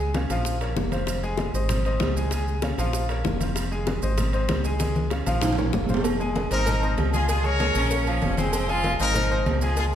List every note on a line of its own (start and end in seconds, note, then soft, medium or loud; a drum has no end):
0.00 0.24 C#2 medium
0.00 maracas soft
0.14 0.27 C#4 medium
0.14 0.28 C#5 medium
0.14 0.28 F5 medium
0.14 high bongo medium
0.14 high conga loud
0.14 high timbale medium
0.14 low timbale medium
0.14 maracas soft
0.30 0.73 A#1 medium
0.30 0.56 F3 medium
0.30 0.56 F4 loud
0.30 0.56 F5 loud
0.30 high bongo soft
0.30 high conga soft
0.30 high timbale medium
0.30 maracas medium
0.45 high bongo medium
0.45 high conga soft
0.45 maracas medium
0.61 0.87 A#3 medium
0.61 0.87 A#4 medium
0.61 0.87 C#5 medium
0.61 high bongo soft
0.61 high conga soft
0.61 high timbale medium
0.61 maracas soft
0.76 1.48 F1 medium
0.76 high bongo medium
0.76 low bongo medium
0.76 high conga medium
0.76 low timbale medium
0.76 maracas soft
0.92 1.18 C4 medium
0.92 1.18 C5 medium
0.92 1.18 F5 medium
0.92 high bongo soft
0.92 high conga medium
0.92 high timbale medium
0.92 maracas medium
1.07 high bongo medium
1.07 high conga soft
1.07 high timbale medium
1.07 maracas medium
1.23 1.49 G#3 medium
1.23 1.49 G#4 medium
1.23 1.49 G#5 medium
1.23 high conga soft
1.23 maracas soft
1.38 high bongo medium
1.38 high conga medium
1.38 high timbale medium
1.38 low timbale medium
1.38 maracas soft
1.54 1.97 G#1 loud
1.54 1.80 C4 medium
1.54 1.80 C5 medium
1.54 1.80 D#5 medium
1.54 high conga soft
1.54 maracas medium
1.69 high bongo medium
1.69 high conga soft
1.69 low conga medium
1.69 high timbale medium
1.69 maracas medium
1.85 2.11 C4 medium
1.85 2.11 C5 medium
1.85 2.11 D#5 medium
1.85 high conga soft
1.85 high timbale medium
1.85 maracas soft
2.00 2.73 C#2 medium
2.00 high bongo medium
2.00 low bongo medium
2.00 high conga medium
2.00 high timbale loud
2.00 low timbale loud
2.00 maracas soft
2.16 2.29 G#3 medium
2.16 2.29 G#4 medium
2.16 2.29 G#5 medium
2.16 maracas medium
2.31 2.58 G#3 medium
2.31 2.58 G#4 medium
2.31 2.58 G#5 medium
2.31 high bongo medium
2.31 high conga soft
2.31 high timbale medium
2.31 maracas medium
2.48 high conga soft
2.48 maracas soft
2.62 2.75 C#4 medium
2.62 2.76 C#5 medium
2.62 2.76 F5 medium
2.62 high bongo medium
2.62 high conga loud
2.62 high timbale medium
2.62 low timbale medium
2.62 maracas soft
2.78 3.21 A#1 loud
2.78 3.04 F3 loud
2.78 3.04 F4 loud
2.78 3.04 F5 loud
2.78 high bongo soft
2.78 high conga soft
2.78 high timbale medium
2.78 maracas medium
2.93 high bongo medium
2.93 high conga soft
2.93 maracas medium
3.09 3.35 A#3 medium
3.09 3.35 A#4 medium
3.09 3.36 C#5 medium
3.09 high bongo soft
3.09 high conga soft
3.09 high timbale medium
3.09 maracas soft
3.25 3.97 F1 medium
3.25 high bongo medium
3.25 low bongo medium
3.25 high conga medium
3.25 low timbale medium
3.25 maracas soft
3.40 3.66 C4 medium
3.40 3.66 C5 medium
3.40 3.66 F5 medium
3.40 high bongo soft
3.40 high conga medium
3.40 high timbale medium
3.40 maracas medium
3.56 high bongo medium
3.56 high conga soft
3.56 high timbale medium
3.56 maracas medium
3.71 3.97 G#3 medium
3.71 3.97 G#4 medium
3.71 3.97 G#5 medium
3.71 high conga soft
3.71 maracas soft
3.87 high bongo medium
3.87 high conga loud
3.87 high timbale medium
3.87 low timbale medium
3.87 maracas soft
4.02 4.46 G#1 loud
4.02 4.28 C4 medium
4.02 4.28 C5 medium
4.02 4.29 D#5 medium
4.02 high conga soft
4.02 maracas medium
4.18 high bongo medium
4.18 high conga soft
4.18 low conga medium
4.18 high timbale loud
4.18 maracas medium
4.33 4.59 C4 medium
4.33 4.59 C5 medium
4.33 4.59 D#5 medium
4.33 high conga soft
4.33 high timbale medium
4.33 maracas soft
4.49 5.21 C#2 medium
4.49 high bongo medium
4.49 low bongo medium
4.49 high conga medium
4.49 high timbale loud
4.49 low timbale medium
4.49 maracas soft
4.64 4.77 G#3 medium
4.64 4.78 G#4 medium
4.64 4.78 G#5 medium
4.64 maracas medium
4.80 5.06 G#3 medium
4.80 5.06 G#4 medium
4.80 5.06 G#5 medium
4.80 high bongo medium
4.80 high conga loud
4.80 high timbale medium
4.80 maracas loud
4.95 high conga loud
4.95 maracas soft
5.10 5.24 C#4 medium
5.10 5.24 C#5 medium
5.10 5.25 F5 medium
5.10 high bongo medium
5.10 high timbale medium
5.10 low timbale medium
5.10 maracas soft
5.26 5.70 A#1 medium
5.26 5.52 F3 loud
5.26 5.52 F4 loud
5.26 5.53 F5 loud
5.26 high bongo soft
5.26 high conga medium
5.26 high timbale medium
5.26 maracas medium
5.42 high bongo medium
5.42 low conga loud
5.42 high timbale loud
5.42 maracas loud
5.53 high timbale medium
5.57 5.83 A#3 medium
5.57 5.83 A#4 medium
5.57 5.84 C#5 medium
5.57 high bongo soft
5.57 low conga loud
5.57 maracas soft
5.63 high timbale medium
5.73 6.46 F1 medium
5.73 high bongo medium
5.73 low bongo medium
5.73 low conga medium
5.73 maracas soft
5.84 low timbale medium
5.89 6.02 C4 medium
5.89 6.02 C5 medium
5.89 6.02 F5 medium
5.89 high bongo soft
5.89 low conga loud
5.89 maracas medium
5.94 low timbale loud
6.04 cowbell loud
6.04 high conga soft
6.04 low agogo loud
6.04 maracas medium
6.20 6.46 G#3 loud
6.20 6.46 G#4 medium
6.20 6.46 G#5 medium
6.20 high conga soft
6.20 maracas soft
6.35 cowbell medium
6.35 high conga loud
6.35 low timbale medium
6.35 low agogo medium
6.35 maracas soft
6.51 6.94 G#1 medium
6.51 6.64 C4 loud
6.51 6.95 D#4 medium
6.51 6.95 A#4 loud
6.51 6.64 C5 medium
6.51 6.64 D#5 medium
6.51 cowbell medium
6.51 high conga soft
6.51 low agogo medium
6.51 maracas medium
6.66 6.80 C4 medium
6.66 6.80 C5 medium
6.66 6.80 D#5 medium
6.66 cowbell loud
6.66 high conga soft
6.66 low conga medium
6.66 low agogo loud
6.66 maracas medium
6.82 7.08 C4 medium
6.82 7.08 C5 medium
6.82 7.08 D#5 medium
6.82 high conga soft
6.82 maracas soft
6.98 7.70 C#2 medium
6.98 cowbell medium
6.98 high conga loud
6.98 low timbale loud
6.98 low agogo loud
6.98 maracas soft
7.12 7.26 G#3 medium
7.12 7.28 F4 medium
7.12 7.27 G#4 loud
7.12 7.27 G#4 medium
7.12 7.27 G#5 medium
7.12 high conga medium
7.12 low agogo loud
7.12 maracas medium
7.28 7.54 G#3 loud
7.28 7.44 F4 medium
7.28 7.43 G#4 loud
7.28 7.55 G#4 medium
7.28 7.55 G#5 medium
7.28 cowbell loud
7.28 high conga soft
7.28 maracas loud
7.44 8.07 A#4 medium
7.44 8.06 C#5 loud
7.44 high conga soft
7.44 low agogo medium
7.44 maracas soft
7.60 7.85 G#3 medium
7.60 7.86 G#4 medium
7.60 7.86 G#5 medium
7.60 cowbell medium
7.60 high conga loud
7.60 low timbale medium
7.60 low agogo loud
7.60 maracas soft
7.75 8.19 A#1 loud
7.75 8.34 C#4 loud
7.75 cowbell medium
7.75 high conga soft
7.75 low agogo medium
7.75 maracas medium
7.91 8.04 A#3 medium
7.91 8.04 A#4 medium
7.91 8.04 C#5 medium
7.91 cowbell loud
7.91 high conga soft
7.91 low agogo medium
7.91 maracas medium
8.07 8.33 F3 loud
8.07 8.33 F4 loud
8.07 8.33 F5 medium
8.07 high conga soft
8.07 low agogo loud
8.07 maracas soft
8.22 8.94 F1 medium
8.22 cowbell medium
8.22 high conga medium
8.22 low timbale medium
8.22 maracas soft
8.37 8.63 G#3 medium
8.37 8.52 C4 loud
8.37 8.64 G#4 medium
8.37 8.64 G#5 medium
8.37 cowbell medium
8.37 high conga medium
8.37 low agogo medium
8.37 maracas medium
8.53 8.68 C4 loud
8.53 cowbell loud
8.53 high conga soft
8.53 low agogo loud
8.53 maracas loud
8.68 8.94 G#3 medium
8.68 8.92 F4 loud
8.68 8.94 G#4 loud
8.68 8.94 G#5 loud
8.68 high conga soft
8.68 maracas soft
8.84 cowbell medium
8.84 high conga loud
8.84 low timbale medium
8.84 low agogo medium
8.84 maracas soft
8.99 9.43 G#1 loud
8.99 9.13 C4 medium
8.99 9.43 D#4 medium
8.99 9.43 A#4 loud
8.99 9.13 C5 medium
8.99 9.13 D#5 loud
8.99 cowbell medium
8.99 high conga soft
8.99 low agogo medium
8.99 maracas medium
9.15 9.28 C4 medium
9.15 9.28 C5 medium
9.15 9.28 D#5 medium
9.15 cowbell loud
9.15 high conga soft
9.15 low conga loud
9.15 low agogo loud
9.15 maracas medium
9.31 9.56 C4 medium
9.31 9.56 C5 medium
9.31 9.57 D#5 medium
9.31 high conga soft
9.31 maracas soft
9.46 9.95 C#2 medium
9.46 cowbell medium
9.46 high conga medium
9.46 low timbale medium
9.46 low agogo loud
9.46 maracas soft
9.61 9.75 G#3 medium
9.61 9.77 F4 medium
9.61 9.75 G#4 loud
9.61 9.76 G#4 medium
9.61 9.75 G#5 medium
9.61 low agogo loud
9.61 maracas medium
9.77 9.95 G#3 medium
9.77 9.85 F4 medium
9.77 9.95 G#4 medium
9.77 9.84 G#4 medium
9.77 9.95 G#5 medium
9.77 cowbell medium
9.77 high conga soft
9.77 maracas medium